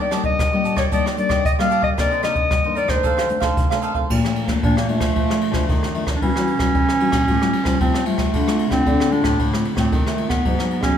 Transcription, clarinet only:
0.01 0.13 D5 medium
0.25 0.75 D#5 medium
0.78 0.84 C#5 medium
0.93 1.05 D5 medium
1.19 1.44 D5 medium
1.46 1.52 D#5 medium
1.60 1.83 F5 medium
1.83 1.90 D#5 medium
1.99 2.23 D5 medium
2.24 2.74 D#5 medium
2.77 2.91 D5 medium
2.90 3.57 C5 medium
4.63 4.76 D4 medium
4.77 4.89 A#3 medium
4.89 5.92 A3 medium
5.94 6.03 A3 medium
6.16 6.24 D4 medium
6.22 7.79 C#4 medium
7.80 8.08 C4 medium
8.06 8.71 A3 medium
8.71 9.13 C4 medium
9.12 9.52 D4 medium
9.77 10.03 C4 medium
10.06 10.28 A3 medium
10.29 10.80 B3 medium
10.83 10.98 C#4 medium

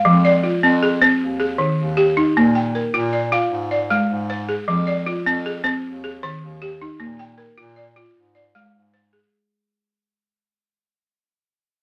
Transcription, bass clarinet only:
0.05 0.53 F2 medium
0.63 1.11 F2 loud
1.21 1.69 D#2 medium
1.79 2.27 D#2 medium
2.36 2.84 A#2 medium
2.94 3.42 A#2 medium
3.51 4.00 G#2 medium
4.09 4.58 G#2 loud
4.68 5.16 F2 loud
5.26 5.74 F2 medium
5.85 6.32 D#2 medium
6.42 6.90 D#2 medium
7.00 7.48 A#2 medium
7.58 8.06 A#2 loud
8.15 8.63 G#2 medium
8.72 9.20 G#2 medium

